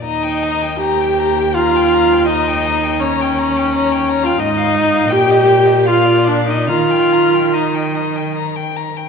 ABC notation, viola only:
X:1
M:3/4
L:1/16
Q:1/4=80
K:Eb
V:1 name="Viola"
E4 G4 F4 | E4 _D6- D F | E4 G4 F2 D E | F4 E4 z4 |]